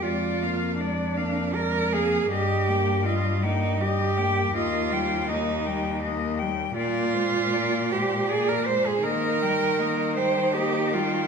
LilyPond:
<<
  \new Staff \with { instrumentName = "Cello" } { \time 3/4 \key ees \major \tempo 4 = 80 d''8 f''8 d''8 f''8 d''8 f''8 | ees''8 g''8 ees''8 g''8 ees''8 g''8 | ees''8 g''8 ees''8 g''8 ees''8 g''8 | d''8 c''8 d''8 c''8 d''8 c''8 |
ees''8 g''8 ees''8 g''8 ees''8 g''8 | }
  \new Staff \with { instrumentName = "Cello" } { \time 3/4 \key ees \major f'4 d'4 bes'8 aes'8 | g'4 f'8 ees'8 g'4 | f'4 ees'4 r4 | f'4. g'8 aes'16 bes'16 c''16 aes'16 |
bes'4. c''8 g'8 f'8 | }
  \new Staff \with { instrumentName = "Cello" } { \time 3/4 \key ees \major aes8 bes8 aes8 bes8 aes8 bes8 | g8 bes8 g8 bes8 g8 bes8 | bes8 g8 bes8 g8 bes8 g8 | bes8 aes8 bes8 aes8 bes8 aes8 |
bes8 g8 bes8 g8 bes8 g8 | }
  \new Staff \with { instrumentName = "Cello" } { \clef bass \time 3/4 \key ees \major f,2. | g,2. | ees,2. | bes,2. |
ees2. | }
>>